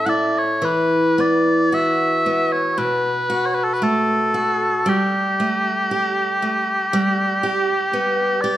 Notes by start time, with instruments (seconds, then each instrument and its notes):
Already playing: steel-string acoustic guitar A2 C#4 A4
0.06 steel-string acoustic guitar E4, bagpipes D5 F#5
0.38 bagpipes C#5
0.62 steel-string acoustic guitar E3, bagpipes B4
1.18 steel-string acoustic guitar B3, bagpipes D5
1.72 steel-string acoustic guitar F#4, bagpipes E5
2.26 steel-string acoustic guitar B3
2.52 bagpipes C#5
2.78 steel-string acoustic guitar B2, bagpipes B4
3.30 steel-string acoustic guitar F#4
3.46 bagpipes C#5
3.55 bagpipes B4
3.64 bagpipes A4
3.74 bagpipes B4
3.82 steel-string acoustic guitar A3, bagpipes A4
4.34 steel-string acoustic guitar F#4
4.86 steel-string acoustic guitar G3, bagpipes G4
5.40 steel-string acoustic guitar A3
5.91 steel-string acoustic guitar G4
6.42 steel-string acoustic guitar A3
6.93 steel-string acoustic guitar G3
7.43 steel-string acoustic guitar G4
7.93 steel-string acoustic guitar B3
8.41 steel-string acoustic guitar G4, bagpipes D5